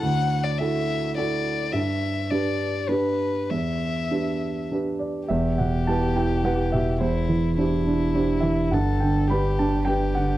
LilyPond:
<<
  \new Staff \with { instrumentName = "Violin" } { \time 3/4 \key e \minor \tempo 4 = 105 fis''8. d''16 e''4 d''4 | e''4 d''4 b'4 | e''2 r4 | g'2. |
e'4 e'2 | a'4 g'4 g'4 | }
  \new Staff \with { instrumentName = "Grand piano" } { \time 3/4 \key e \minor << { r2. | r2. | r2 r8 d''8 | e''8 fis''8 a''8 g''8 fis''8 e''8 |
c''2 r8 e''8 | fis''8 g''8 b''8 a''8 g''8 fis''8 | } \\ { d,4 <e' fis' a'>4 <e' fis' a'>4 | g,4 <d' g' b'>4 <d' g' b'>4 | e,4 <d' g' b'>4 <d' g' b'>4 | e,8 b,8 <e' g' b'>8 e'8 <e' g' b'>8 b,8 |
e,8 e8 <d' g' c''>8 d'8 <d' g' c''>8 e8 | g,8 d8 <d' g' b'>8 d'8 <d' g' b'>8 d8 | } >> }
  \new Staff \with { instrumentName = "Sub bass" } { \clef bass \time 3/4 \key e \minor r2. | r2. | r2. | e,,2.~ |
e,,2. | g,,2. | }
>>